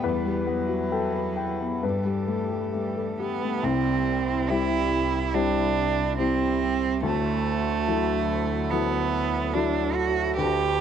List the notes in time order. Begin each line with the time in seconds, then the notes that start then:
Already playing: B4
0.03 E2 E3 G3 E4 B4
0.25 G3
0.47 F#3 B3
0.68 F#4
0.92 A4 G5
1.14 B4
1.36 G5
1.60 B3
1.82 G2 G3 G4 A4 B4
2.04 G3
2.27 A3
2.51 G4
2.74 G3 A3
2.97 A4
3.20 B3 G4
3.42 A3
3.63 C2 G3 C4 E4 G4
4.50 G3 C4 E4
5.34 G3 C4 D4 E4
6.18 G3 C4 E4
7.03 D2 F#3 A3 E4 A4
7.88 F#3 E4 A4
8.71 F#3 B3 E4 A4
9.54 F#3 D4 E4 A4
9.95 F#4
10.36 D2 A3 D4 G4 B4